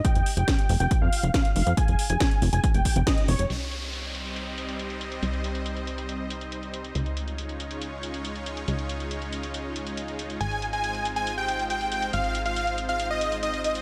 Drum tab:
CC |----------------|----------------|x---------------|----------------|
HH |xxoxxxoxx-oxxxox|xxoxxxoxxxoxxxox|xxxxxxxxx-xxxxxx|xxxxxxxxx-xxxxxx|
SD |----o-------o---|----o-------o---|----------------|----------------|
BD |o---o---o---o---|o---o---o-o-o---|----------------|----------------|

CC |----------------|----------------|----------------|----------------|
HH |xxxxxxxxx-xxxxxx|xxxxxxxxx-xxxxxx|xxxxxxxxx-xxxxxx|xxxxxxxxx-xxxxxx|
SD |----------------|----------------|----------------|----------------|
BD |----------------|----------------|----------------|----------------|